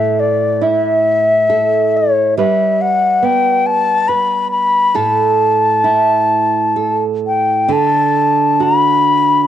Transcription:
0, 0, Header, 1, 3, 480
1, 0, Start_track
1, 0, Tempo, 886263
1, 814, Tempo, 865801
1, 1296, Time_signature, 3, 2, 24, 8
1, 3214, Tempo, 918836
1, 5115, End_track
2, 0, Start_track
2, 0, Title_t, "Flute"
2, 0, Program_c, 0, 73
2, 0, Note_on_c, 0, 76, 53
2, 107, Note_on_c, 0, 74, 53
2, 115, Note_off_c, 0, 76, 0
2, 342, Note_on_c, 0, 76, 68
2, 350, Note_off_c, 0, 74, 0
2, 1072, Note_on_c, 0, 73, 55
2, 1081, Note_off_c, 0, 76, 0
2, 1298, Note_off_c, 0, 73, 0
2, 1301, Note_on_c, 0, 76, 64
2, 1541, Note_on_c, 0, 78, 74
2, 1550, Note_off_c, 0, 76, 0
2, 1780, Note_on_c, 0, 79, 77
2, 1788, Note_off_c, 0, 78, 0
2, 2012, Note_on_c, 0, 81, 81
2, 2020, Note_off_c, 0, 79, 0
2, 2243, Note_on_c, 0, 83, 75
2, 2251, Note_off_c, 0, 81, 0
2, 2478, Note_off_c, 0, 83, 0
2, 2481, Note_on_c, 0, 83, 77
2, 2729, Note_on_c, 0, 81, 66
2, 2737, Note_off_c, 0, 83, 0
2, 3846, Note_off_c, 0, 81, 0
2, 3965, Note_on_c, 0, 79, 58
2, 4202, Note_on_c, 0, 81, 70
2, 4210, Note_off_c, 0, 79, 0
2, 4676, Note_on_c, 0, 83, 87
2, 4684, Note_off_c, 0, 81, 0
2, 5095, Note_off_c, 0, 83, 0
2, 5095, Note_on_c, 0, 83, 59
2, 5115, Note_off_c, 0, 83, 0
2, 5115, End_track
3, 0, Start_track
3, 0, Title_t, "Nylon-string guitar"
3, 0, Program_c, 1, 24
3, 0, Note_on_c, 1, 45, 53
3, 0, Note_on_c, 1, 69, 40
3, 333, Note_on_c, 1, 64, 40
3, 804, Note_off_c, 1, 69, 0
3, 810, Note_on_c, 1, 69, 44
3, 1293, Note_off_c, 1, 69, 0
3, 1298, Note_off_c, 1, 45, 0
3, 1298, Note_on_c, 1, 55, 53
3, 1302, Note_on_c, 1, 71, 46
3, 1342, Note_off_c, 1, 64, 0
3, 1769, Note_on_c, 1, 59, 44
3, 2242, Note_off_c, 1, 71, 0
3, 2248, Note_on_c, 1, 71, 45
3, 2722, Note_on_c, 1, 45, 60
3, 2724, Note_off_c, 1, 71, 0
3, 2726, Note_off_c, 1, 55, 0
3, 2726, Note_on_c, 1, 69, 50
3, 2773, Note_off_c, 1, 59, 0
3, 3218, Note_on_c, 1, 64, 42
3, 3697, Note_off_c, 1, 69, 0
3, 3699, Note_on_c, 1, 69, 40
3, 4182, Note_on_c, 1, 50, 54
3, 4185, Note_off_c, 1, 45, 0
3, 4235, Note_off_c, 1, 64, 0
3, 4660, Note_on_c, 1, 66, 39
3, 5115, Note_off_c, 1, 50, 0
3, 5115, Note_off_c, 1, 66, 0
3, 5115, Note_off_c, 1, 69, 0
3, 5115, End_track
0, 0, End_of_file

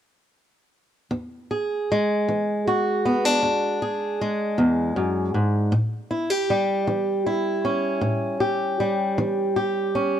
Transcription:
0, 0, Header, 1, 2, 480
1, 0, Start_track
1, 0, Tempo, 767263
1, 697, Time_signature, 12, 3, 24, 8
1, 6380, End_track
2, 0, Start_track
2, 0, Title_t, "Steel-string acoustic guitar"
2, 0, Program_c, 0, 25
2, 693, Note_on_c, 0, 40, 68
2, 943, Note_on_c, 0, 68, 44
2, 1128, Note_off_c, 0, 40, 0
2, 1199, Note_on_c, 0, 56, 55
2, 1429, Note_on_c, 0, 52, 52
2, 1662, Note_off_c, 0, 68, 0
2, 1673, Note_on_c, 0, 66, 57
2, 1857, Note_off_c, 0, 52, 0
2, 1911, Note_on_c, 0, 59, 51
2, 2033, Note_off_c, 0, 59, 0
2, 2033, Note_on_c, 0, 62, 43
2, 2144, Note_on_c, 0, 40, 72
2, 2387, Note_off_c, 0, 66, 0
2, 2390, Note_on_c, 0, 68, 55
2, 2575, Note_off_c, 0, 40, 0
2, 2629, Note_off_c, 0, 56, 0
2, 2636, Note_on_c, 0, 56, 53
2, 2865, Note_on_c, 0, 40, 63
2, 3102, Note_off_c, 0, 40, 0
2, 3104, Note_on_c, 0, 42, 55
2, 3340, Note_off_c, 0, 42, 0
2, 3343, Note_on_c, 0, 44, 51
2, 3557, Note_off_c, 0, 68, 0
2, 3560, Note_off_c, 0, 56, 0
2, 3578, Note_on_c, 0, 45, 69
2, 3582, Note_off_c, 0, 44, 0
2, 3588, Note_off_c, 0, 62, 0
2, 3820, Note_on_c, 0, 64, 47
2, 3941, Note_off_c, 0, 64, 0
2, 3941, Note_on_c, 0, 67, 46
2, 4011, Note_off_c, 0, 45, 0
2, 4067, Note_on_c, 0, 55, 49
2, 4300, Note_on_c, 0, 52, 53
2, 4540, Note_off_c, 0, 67, 0
2, 4544, Note_on_c, 0, 64, 54
2, 4732, Note_off_c, 0, 52, 0
2, 4784, Note_on_c, 0, 61, 56
2, 5013, Note_on_c, 0, 45, 62
2, 5254, Note_off_c, 0, 64, 0
2, 5257, Note_on_c, 0, 67, 53
2, 5447, Note_off_c, 0, 45, 0
2, 5498, Note_off_c, 0, 55, 0
2, 5506, Note_on_c, 0, 55, 53
2, 5743, Note_on_c, 0, 52, 66
2, 5976, Note_off_c, 0, 67, 0
2, 5982, Note_on_c, 0, 67, 54
2, 6171, Note_off_c, 0, 52, 0
2, 6218, Note_off_c, 0, 61, 0
2, 6225, Note_on_c, 0, 61, 51
2, 6380, Note_off_c, 0, 55, 0
2, 6380, Note_off_c, 0, 61, 0
2, 6380, Note_off_c, 0, 67, 0
2, 6380, End_track
0, 0, End_of_file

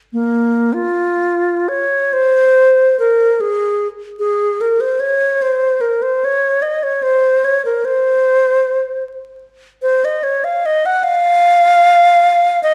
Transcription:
0, 0, Header, 1, 2, 480
1, 0, Start_track
1, 0, Tempo, 1138520
1, 50, Time_signature, 6, 3, 24, 8
1, 519, Tempo, 907716
1, 999, Tempo, 849858
1, 1479, Tempo, 809717
1, 4359, Tempo, 801068
1, 6279, Tempo, 782269
1, 7316, End_track
2, 0, Start_track
2, 0, Title_t, "Alto flute"
2, 0, Program_c, 0, 73
2, 54, Note_on_c, 0, 58, 72
2, 309, Note_on_c, 0, 65, 87
2, 315, Note_off_c, 0, 58, 0
2, 759, Note_on_c, 0, 73, 90
2, 767, Note_off_c, 0, 65, 0
2, 995, Note_on_c, 0, 72, 96
2, 1004, Note_off_c, 0, 73, 0
2, 1478, Note_off_c, 0, 72, 0
2, 1482, Note_on_c, 0, 70, 86
2, 1726, Note_on_c, 0, 68, 88
2, 1735, Note_off_c, 0, 70, 0
2, 2006, Note_off_c, 0, 68, 0
2, 2192, Note_on_c, 0, 68, 96
2, 2439, Note_on_c, 0, 70, 79
2, 2448, Note_off_c, 0, 68, 0
2, 2556, Note_on_c, 0, 72, 82
2, 2565, Note_off_c, 0, 70, 0
2, 2670, Note_on_c, 0, 73, 90
2, 2679, Note_off_c, 0, 72, 0
2, 2920, Note_on_c, 0, 72, 88
2, 2929, Note_off_c, 0, 73, 0
2, 3151, Note_on_c, 0, 70, 82
2, 3159, Note_off_c, 0, 72, 0
2, 3278, Note_on_c, 0, 72, 86
2, 3287, Note_off_c, 0, 70, 0
2, 3409, Note_on_c, 0, 73, 91
2, 3418, Note_off_c, 0, 72, 0
2, 3633, Note_on_c, 0, 75, 86
2, 3642, Note_off_c, 0, 73, 0
2, 3757, Note_on_c, 0, 73, 92
2, 3766, Note_off_c, 0, 75, 0
2, 3872, Note_on_c, 0, 72, 99
2, 3880, Note_off_c, 0, 73, 0
2, 4120, Note_on_c, 0, 73, 88
2, 4129, Note_off_c, 0, 72, 0
2, 4240, Note_off_c, 0, 73, 0
2, 4244, Note_on_c, 0, 70, 77
2, 4360, Note_on_c, 0, 72, 93
2, 4369, Note_off_c, 0, 70, 0
2, 5075, Note_off_c, 0, 72, 0
2, 5543, Note_on_c, 0, 72, 96
2, 5677, Note_on_c, 0, 75, 86
2, 5686, Note_off_c, 0, 72, 0
2, 5789, Note_on_c, 0, 73, 92
2, 5798, Note_off_c, 0, 75, 0
2, 5914, Note_on_c, 0, 77, 91
2, 5923, Note_off_c, 0, 73, 0
2, 6043, Note_on_c, 0, 75, 103
2, 6052, Note_off_c, 0, 77, 0
2, 6162, Note_on_c, 0, 78, 100
2, 6171, Note_off_c, 0, 75, 0
2, 6269, Note_on_c, 0, 77, 124
2, 6278, Note_off_c, 0, 78, 0
2, 7238, Note_off_c, 0, 77, 0
2, 7249, Note_on_c, 0, 75, 102
2, 7316, Note_off_c, 0, 75, 0
2, 7316, End_track
0, 0, End_of_file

